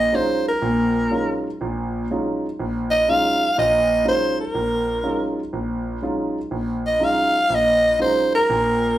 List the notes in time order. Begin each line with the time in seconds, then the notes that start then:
Already playing: D#5
0.13 F#3 G#3 C#4 D#4 F4 C5
0.48 A#4
0.62 A#1 A#2
1.11 F#3 G#3 C#4 D#4 F4
1.61 A#1 A#2
2.11 F#3 G#3 C#4 D#4 F4
2.60 A#1
2.91 D#5
3.08 F#3 G#3 C#4 D#4 F4 F5
3.58 A#1 A#2 D#5
4.05 F#3 G#3 C#4 D#4 F4 C5
4.41 A#4
4.55 A#1
5.03 F#3 G#3 C#4 D#4 F4
5.53 A#1
6.02 F#3 G#3 C#4 D#4 F4
6.51 A#1
6.86 D#5
6.99 F#3 G#3 C#4 D#4 F4
7.04 F5
7.50 A#1
7.55 D#5
7.99 F#3 G#3 C#4 D#4 F4 C5
8.35 A#4
8.49 A#1 A#2